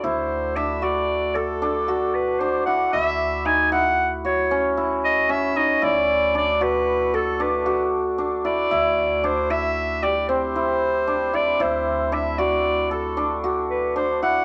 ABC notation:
X:1
M:11/8
L:1/8
Q:1/4=114
K:Dmix
V:1 name="Clarinet"
c2 e d2 A3 B c f | e2 ^g f2 ^c2 z _e =e _e | d2 d B2 A B2 z2 d- | d2 c e2 d c4 d |
c2 e d2 A2 z B c f |]
V:2 name="Hammered dulcimer"
E2 D F2 A D F2 D E | E2 _E =E2 F ^C E2 C _E | E2 D F2 A D F2 D E | E2 D E2 G C E2 D E |
E2 D F2 A D F2 D E |]
V:3 name="Upright bass" clef=bass
D,,8- D,,3 | D,,8- D,,3 | D,,8- D,,3 | D,,8- D,,3 |
D,,8- D,,3 |]